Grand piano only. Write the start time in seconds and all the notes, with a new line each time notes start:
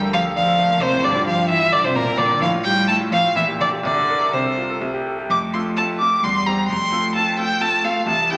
Already playing: D2 A4 A#4
0.02 A4
0.14 G4
0.24 A4
0.36 D4
0.47 A4
0.59 A3
0.70 A#3
0.81 A3
0.93 A2
1.04 G2
1.16 F4
1.27 G4
1.38 F4
1.50 E4
1.61 F4
1.72 D4
1.84 F4
1.96 A#3
2.08 C4
2.19 A#3
2.31 D3
2.42 A2
2.54 F4
2.66 G4
2.77 F4
2.89 E4
3.00 F4
3.12 C4
3.24 F4
3.36 A#2
3.48 G4
3.61 A4
3.72 G4
3.83 C2
3.96 A4
4.09 A#4
4.21 A4
4.34 G4
4.46 A4
4.58 F4
4.70 A4
4.82 C2
4.94 G4
5.06 A4
5.19 G4
5.30 F2
5.54 C4 F4 A4
5.78 C4 F4 A4
6.01 C4 F4 A4
6.24 E2
6.46 C4 G4 C5
6.69 F2
6.92 C4 F4 A4
7.15 C4 F4 A4
7.37 C4 F4 A4
7.60 C4 F4 A4
7.84 C4 F4 A4
8.07 C2
8.31 C4 E4 G4